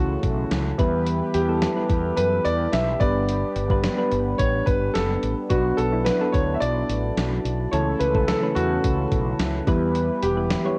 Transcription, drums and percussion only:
0.23 kick, closed hi-hat
0.51 snare, closed hi-hat
0.79 kick, closed hi-hat
1.07 closed hi-hat
1.34 closed hi-hat
1.62 snare, closed hi-hat
1.89 kick, closed hi-hat
2.17 closed hi-hat
2.45 closed hi-hat
2.73 snare, closed hi-hat
3.01 kick, closed hi-hat
3.29 closed hi-hat
3.56 closed hi-hat
3.70 kick
3.84 snare, closed hi-hat
4.12 closed hi-hat
4.39 kick, closed hi-hat
4.67 kick, closed hi-hat
4.95 snare, closed hi-hat
5.23 closed hi-hat
5.50 kick, closed hi-hat
5.78 closed hi-hat
6.06 snare, closed hi-hat
6.34 kick, closed hi-hat
6.62 closed hi-hat
6.90 closed hi-hat
7.17 snare, closed hi-hat
7.45 closed hi-hat
7.73 closed hi-hat
8.00 closed hi-hat
8.15 kick
8.28 snare, closed hi-hat
8.56 closed hi-hat
8.84 kick, closed hi-hat
9.12 kick, closed hi-hat
9.39 snare, closed hi-hat
9.67 kick, closed hi-hat
9.95 closed hi-hat
10.22 closed hi-hat
10.50 snare, closed hi-hat

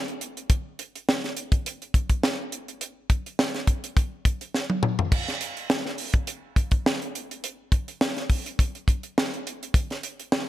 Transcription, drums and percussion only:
0.08 closed hi-hat
0.21 closed hi-hat
0.37 closed hi-hat
0.50 kick, closed hi-hat
0.79 closed hi-hat
0.95 closed hi-hat
1.09 snare
1.24 snare, closed hi-hat
1.37 closed hi-hat
1.52 kick, closed hi-hat
1.66 closed hi-hat
1.82 closed hi-hat
1.94 kick, closed hi-hat
2.09 kick, closed hi-hat
2.23 snare
2.52 closed hi-hat
2.68 closed hi-hat
2.81 closed hi-hat
3.10 kick, closed hi-hat
3.26 closed hi-hat
3.39 snare
3.54 snare, closed hi-hat
3.67 kick, closed hi-hat
3.84 closed hi-hat
3.97 kick, closed hi-hat
4.25 kick, closed hi-hat
4.41 closed hi-hat
4.54 snare
4.70 high tom
4.83 mid tom
4.99 floor tom
5.12 kick, crash
5.28 snare, closed hi-hat
5.41 closed hi-hat
5.57 closed hi-hat
5.70 snare
5.86 snare
5.98 open hi-hat
6.13 kick, closed hi-hat
6.27 closed hi-hat
6.56 kick, closed hi-hat
6.71 kick, closed hi-hat
6.86 snare
7.02 closed hi-hat
7.15 closed hi-hat
7.31 closed hi-hat
7.44 closed hi-hat
7.72 kick, closed hi-hat
7.88 closed hi-hat
8.01 snare
8.16 snare, closed hi-hat
8.30 kick, open hi-hat
8.46 closed hi-hat
8.59 kick, closed hi-hat
8.75 closed hi-hat
8.88 kick, closed hi-hat
9.03 closed hi-hat
9.18 snare
9.34 closed hi-hat
9.47 closed hi-hat
9.63 closed hi-hat
9.74 kick, closed hi-hat
9.90 snare, closed hi-hat
10.03 closed hi-hat
10.20 closed hi-hat
10.32 snare

